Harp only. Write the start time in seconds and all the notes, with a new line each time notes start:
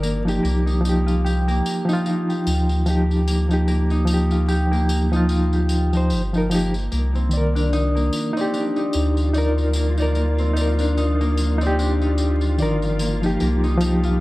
Already playing: C4 D#4
0.02 A#3
0.43 A#3
0.66 D#4
1.06 F4
1.24 G4
1.48 A#3
1.88 D#4
2.06 F4
2.29 G4
3.27 A#3
3.67 A#3
3.91 D#4
4.31 F4
4.48 G4
4.71 A#3
5.12 D#4
5.30 F4
5.53 G4
6.51 A#3
6.91 A#3
7.15 C4
7.55 D4
7.73 D#4
7.95 A#3
8.36 C4
8.53 D4
8.76 D#4
9.75 A#3
10.16 A#3
10.39 C4
10.80 D4
10.97 D#4
11.21 A#3
11.61 C4
11.79 D4
12.02 D#4
13.00 A#3
13.40 A#3
13.63 D#4
14.04 F4